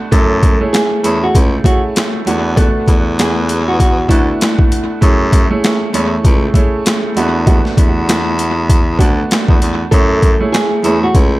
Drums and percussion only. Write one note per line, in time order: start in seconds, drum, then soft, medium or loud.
0.12 kick loud
0.12 closed hi-hat medium
0.43 kick loud
0.43 closed hi-hat medium
0.74 snare loud
0.74 snare medium
0.74 closed hi-hat medium
1.04 closed hi-hat medium
1.35 kick medium
1.35 closed hi-hat loud
1.64 kick medium
1.64 closed hi-hat medium
1.96 snare loud
1.96 closed hi-hat medium
2.27 closed hi-hat medium
2.57 kick loud
2.57 closed hi-hat medium
2.88 kick medium
2.88 closed hi-hat medium
3.19 snare loud
3.19 snare medium
3.19 closed hi-hat medium
3.49 closed hi-hat medium
3.80 kick medium
3.80 closed hi-hat loud
4.09 kick medium
4.09 closed hi-hat medium
4.41 snare loud
4.41 closed hi-hat medium
4.59 kick loud
4.72 closed hi-hat medium
5.02 kick loud
5.02 closed hi-hat medium
5.33 kick loud
5.33 closed hi-hat medium
5.64 snare loud
5.64 snare medium
5.64 closed hi-hat medium
5.94 closed hi-hat medium
6.25 kick loud
6.25 closed hi-hat loud
6.54 kick medium
6.54 closed hi-hat medium
6.86 snare loud
6.86 snare medium
6.86 closed hi-hat loud
7.17 closed hi-hat medium
7.47 kick loud
7.47 closed hi-hat medium
7.65 snare soft
7.77 kick loud
7.77 closed hi-hat medium
8.09 snare loud
8.09 snare medium
8.09 closed hi-hat medium
8.39 closed hi-hat medium
8.69 kick loud
8.69 closed hi-hat loud
8.99 kick medium
8.99 closed hi-hat medium
9.31 snare loud
9.31 closed hi-hat medium
9.48 kick loud
9.62 closed hi-hat medium
9.92 kick loud
9.92 closed hi-hat medium
10.22 kick medium
10.22 closed hi-hat medium
10.54 snare loud
10.54 snare medium
10.54 closed hi-hat medium
10.84 closed hi-hat medium
11.15 kick medium
11.15 closed hi-hat loud